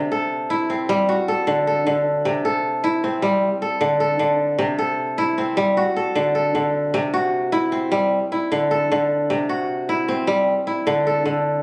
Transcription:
kora
Already playing: C3 C4 F#4 A4
0.12 A4
0.50 E4
0.70 C4
0.89 G3
1.09 F#4
1.28 A4
1.47 D3
1.67 A4
1.87 D3
2.25 C3
2.45 A4
2.84 E4
3.04 C4
3.22 G3
3.62 A4
3.81 D3
4.00 A4
4.19 D3
4.59 C3
4.79 A4
5.18 E4
5.38 C4
5.57 G3
5.77 F#4
5.96 A4
6.15 D3
6.35 A4
6.55 D3
6.94 C3
7.14 F#4
7.52 E4
7.72 C4
7.92 G3
8.32 E4
8.52 D3
8.71 A4
8.92 D3
9.30 C3
9.49 F#4
9.89 E4
10.08 C4
10.27 G3
10.67 E4
10.87 D3
11.07 A4
11.25 D3

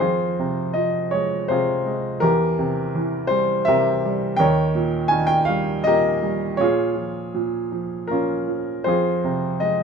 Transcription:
grand piano
0.00 F2 F4 G#4 C5
0.39 C3
0.73 F3 D#5
1.11 G#3 C#5
1.48 C3 F4 G#4 C5
1.86 G#3
2.20 E2 G4 A#4
2.59 C3
2.95 E3
3.27 G3 C5
3.65 C3 G4 A#4 E5
4.05 G3
4.37 D#2 A#4 C#5 G5
4.75 A#2
5.08 D#3 G#5
5.27 G5
5.45 G3 F5
5.84 A#2 G4 A#4 D#5
6.22 G3
6.57 A#2 F4 C#5
6.61 G#4
6.95 F3
7.34 A#2
7.72 F3
8.07 A#2 F4 A#4
8.12 C#4
8.48 F3
8.84 F2 F4 C5
8.88 G#4
9.24 C3
9.60 G#3 D#5

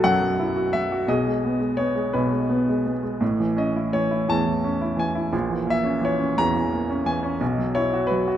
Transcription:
grand piano
Already playing: B1 B2 F#3 E4 F#4 A4 B4
0.04 F#2 F#3 F#5
0.21 F#3
0.39 E4
0.56 F#4
0.73 F#3 E5
0.92 F#4
1.08 B1 B2 G#4 D#5
1.27 G#3
1.45 B3
1.60 G#3
1.77 B3 C#5
1.95 G#3
2.13 B1 B2 B4
2.32 G#3
2.49 B3
2.69 G#3
2.85 B3
3.03 G#3
3.21 A1 A2
3.40 E3
3.57 C#4 D#5
3.76 E4
3.93 E3 C#5
4.11 E4
4.28 E2 E3 A5
4.46 E3
4.64 C#4
4.81 E4
4.97 E3 G#5
5.15 E4
5.33 A#1 A#2
5.50 E3
5.67 A#3 E5
5.84 C#4
6.01 E3 C#5
6.19 C#4
6.38 E2 E3 A#5
6.56 E3
6.72 A#3
6.90 C#4
7.06 E3 G#5
7.23 C#4
7.41 B1 B2
7.58 F#3
7.75 E4 C#5
7.93 F#4
8.07 B4
8.11 F#3
8.28 F#4

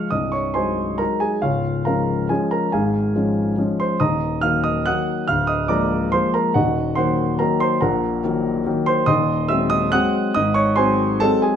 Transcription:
grand piano
Already playing: F6
0.11 C1 C2 D#5 D#6
0.32 C#5 C#6
0.54 F#3 G#3 D#4 C5 G#5 C6
0.98 F#3 G#3 D#4 A#4 A#5
1.20 G#4 G#5
1.42 C#1 C#2 F4 C#5 F5
1.85 F3 G#3 C#4 A#4 F5 A#5
2.29 F3 G#3 C#4 G#4 G#5
2.51 A#4 A#5
2.72 G#1 G#2 G#4 F5 G#5
3.15 F3 G#3 C#4
3.58 F3 G#3 C#4
3.80 C5 C6
4.00 D#1 D#2 D#5 A#5 D#6
4.41 D#3 F#3 A#3 F5 F6
4.64 D#5 D#6
4.86 D#3 F#3 A#3 F#5 D#6 F#6
5.28 D1 D2 F5 F6
5.47 D#5 D#6
5.68 F3 G#3 A#3 D5 A#5 D6
6.12 F3 G#3 A#3 C5 C6
6.34 A#4 A#5
6.54 D#1 D#2 F#4 D#5 F#5
6.95 D#3 F#3 A#3 C5 F#5 C6
7.39 D#3 F#3 A#3 A#4 A#5
7.60 C5 C6
7.81 A#1 A#2 A#4 F#5 A#5
8.24 D#3 F#3 A#3
8.66 D#3 F#3 A#3
8.86 C5 C6
9.06 D#1 D#2 D#5 C6 D#6
9.48 F#3 G#3 C4 E5 E6
9.70 D#5 D#6
9.92 F#3 G#3 C4 F#5 D#6 F#6
10.35 G#1 G#2 D#5 D#6
10.54 C#5 C#6
10.76 F#3 G#3 C4 C5 G#5 C6
11.20 F#3 G#3 C4 A4 A5
11.42 G#4 G#5

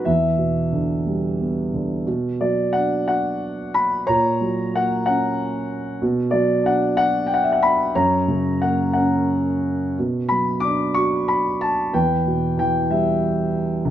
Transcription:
grand piano
0.05 E2 E5
0.37 B2
0.72 D3
1.06 G3
1.40 B3
1.74 D3
2.07 B2
2.41 F#3 D5
2.73 D4 F#5
3.08 F#4 F#5
3.74 B5
4.07 A#2 C#5 A#5
4.41 F#3
4.74 A#3 F#5
5.06 C#4 F#5
6.02 B2
6.31 F#3 D5
6.63 D4 F#5
6.97 F#4 F#5
7.27 G5
7.34 F#5
7.43 E5
7.52 F#5
7.63 B5
7.95 F#2 C#5 A#5
8.28 C#3
8.62 A#3 F#5
8.93 C#4 F#5
9.99 B2
10.29 F#3 B5
10.60 D6
10.65 D4
10.94 F#4 C#6
11.28 B5
11.61 A5
11.93 E2 B4 G5
12.26 B2
12.57 E3 G5
12.91 G3 E5
13.85 C#2

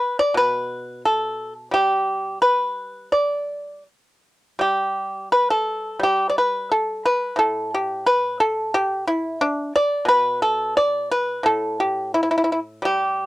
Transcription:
pipa
Already playing: B4
0.19 D5
0.34 B2 B4
1.05 A4
1.71 G3 G4
2.42 B4
3.12 D5
4.59 G3 G4
5.32 B4
5.50 A4
5.99 G3 G4
6.29 D5
6.38 B4
6.71 A4
7.05 B4
7.36 A2 A4
7.74 G4
8.06 B4
8.40 A4
8.74 G4
9.07 E4
9.41 D4
9.76 D5
10.05 B2 B4
10.42 A4
10.77 D5
11.11 B4
11.43 A2 A4
11.80 G4
12.14 E4
12.23 E4
12.31 E4
12.38 E4
12.44 E4
12.52 E4
12.82 G3 G4

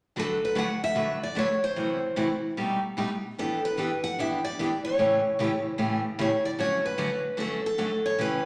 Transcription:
steel-string acoustic guitar
0.16 D3 F#3 A3 D4 F#4 A4 B4
0.45 B4
0.55 D3 F#3 A3 D4 F#4 B4 F#5
0.84 E5
0.95 D3 F#3 A3 D4 F#4 B4
1.23 D5
1.35 D3 F#3 A3 D4 F#4 B4 C#5
1.64 C5
1.76 F#2 C3 E3 A3 E4 F#4
2.16 F#2 C3 E3 A3 E4 F#4
2.57 B2 G3 A3 D#4 G4
2.97 B2 G3 A3 D#4 G4
3.38 E3 B3 D4 G4 A4
3.65 B4
3.77 E3 B3 D4 G4
4.04 F#5
4.18 E3 B3 D4 G4 E5
4.45 D5
4.59 E3 B3 D4 G4
4.85 C#5
4.98 A2 C#3 E3 A3 C#4 G4
5.39 A2 C#3 E3 A3 C#4 G4
5.73 B4
5.78 A2 C#3 E3 A3 C#4 G4
6.19 A2 C#3 E3 A3 C#4 G4 C#5
6.45 D5
6.58 D3 F#3 A3 C#4 F#4 C#5
6.86 B4
6.98 D3 F#3 A3 C#4 F#4
7.37 D3 F#3 A3 C#4 F#4 A4
7.66 A4
7.78 D3 F#3 A3 C#4 F#4
8.06 C#5
8.18 C#3 E3 A3 C#4 G4 B4

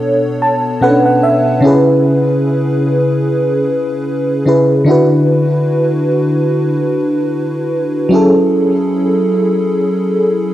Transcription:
fm electric piano
Already playing: B2 B3 D4 A4 C#5
0.42 A5
0.81 B2 B3 C#4 A4 B4 F#5
0.89 D4
1.06 F#5
1.23 E5
1.61 C#3 C#4 E4
1.65 G#4 B4
4.46 C#3 C#4 E4 G#4 B4
4.85 D3 D4 E4
4.89 F#4 B4
8.09 F#3 C#4 E4
8.14 G#4 A4

